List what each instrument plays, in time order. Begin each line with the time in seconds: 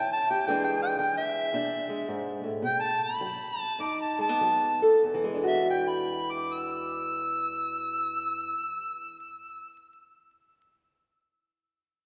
Already playing: steel-string acoustic guitar E3 C#4 E4, harmonica G5
0.13 harmonica A5
0.31 steel-string acoustic guitar G4, harmonica G5
0.47 steel-string acoustic guitar E2 E3 G#3 D4 G#4, harmonica G5
0.64 harmonica G5
0.82 harmonica G5
0.98 steel-string acoustic guitar E3, harmonica G5
1.18 harmonica E5
1.54 steel-string acoustic guitar B2 D4
1.89 steel-string acoustic guitar G#3
2.08 steel-string acoustic guitar G#2
2.44 steel-string acoustic guitar A2
2.62 steel-string acoustic guitar B2, harmonica G5
2.81 harmonica A5
3.03 harmonica B5
3.21 steel-string acoustic guitar F#3
3.61 harmonica A5
3.79 steel-string acoustic guitar F#2 D#4, harmonica D6
4.01 harmonica A5
4.19 steel-string acoustic guitar G#3, harmonica A5
4.29 steel-string acoustic guitar B3
4.41 steel-string acoustic guitar F#3
4.82 steel-string acoustic guitar A4
5.03 steel-string acoustic guitar E2
5.14 steel-string acoustic guitar E3
5.24 steel-string acoustic guitar G#3
5.33 steel-string acoustic guitar D4
5.43 steel-string acoustic guitar F#4
5.48 harmonica E5
5.71 harmonica G5
5.89 harmonica B5
6.32 harmonica D6
6.54 harmonica E6